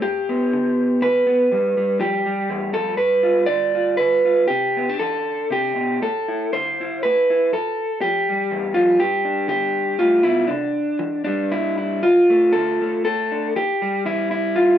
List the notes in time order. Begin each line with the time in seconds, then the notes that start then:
0.02 G2 G4
0.29 B3
0.53 D3
1.02 D3 B4
1.27 B3
1.52 F2 G3
1.77 G3
2.00 F3 G4
2.26 G3
2.50 E2
2.73 F2 A4
2.97 G2 B4
3.23 F4
3.46 D3 D5
3.75 F4
3.97 D3 B4
4.25 F4
4.48 C3 G4
4.77 B3
4.89 D4
4.99 E3 A4
5.50 C3 G4
5.76 B2
6.02 A2 A4
6.28 E4
6.53 D3 C5
6.81 E4
7.03 A2 B4
7.30 E4
7.53 F2 A4
8.01 F3 G4
8.29 G3
8.51 E2
8.74 F2 F4
9.00 G2 G4
9.25 D4
9.48 D3 G4
9.99 A2 F4
10.23 B2 E4
10.47 C3 D4
10.99 E3
11.24 G3 D4
11.51 G2 E4
11.78 E4
12.03 D2 F4
12.30 A3
12.53 D3 A4
12.81 A3
13.05 A2 A4
13.32 D4
13.56 E2 G4
13.82 G3
14.06 E3 E4
14.31 E4
14.55 E2 F4